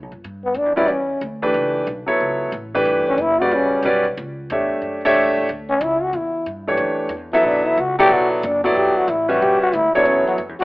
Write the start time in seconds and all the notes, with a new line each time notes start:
0.02 B1
0.12 G1
0.24 G2
0.44 B3
0.54 F#2 D4
0.66 E2
0.76 D2 G3 C#4 E4 F#4 B4 D5
0.88 E2 C#4
1.21 D2
1.42 E3 A3 D4 G4 B4
1.54 C#2
1.87 B1
2.06 F#3 B3 E4 A4 C#5, muted upright bass stroke
2.20 C#2
2.52 A1
2.74 E3 A3 D4 G4 B4
2.85 G1
3.08 C#4
3.18 F#1 E4
3.40 C#3 G3 F#4 B4 D5
3.51 A1 C#4
3.83 B1 G3 C#4 F#4 B4 D5
4.17 C#2
4.50 E2 A3 D4 G4 C#5 E5
4.82 F#2
5.05 A3 D4 G4 C#5 E5
5.14 E2
5.25 C#2
5.37 A1
5.49 D2
5.70 C#4
5.81 C#2 E4
6.03 F#4
6.13 E2 E4
6.46 G2
6.67 E3 A3 D4 G4 C#5
6.77 F#2
7.09 E2
7.33 F#3 B3 E4 A4 E5
7.43 B1 D4
7.67 E4
7.78 C#2 F#4
7.99 F#3 B3 E4 G4 A4 D5
8.09 B1 F#4
8.32 B3
8.43 F#1 D4
8.64 F#3 B3 E4 F#4 A4 D5
8.75 G1 G4
8.96 F#4, muted upright bass stroke
9.08 A1 E4
9.28 G3 C#4 F#4 B4 E5
9.42 B1 G4
9.62 F#4, muted upright bass stroke
9.73 D2 E4
9.94 F#3 B3 D4 E4 A4 C#5, muted upright bass stroke
10.05 E2 C#4
10.27 F#3
10.38 F#2
10.49 E2
10.60 D2 F#4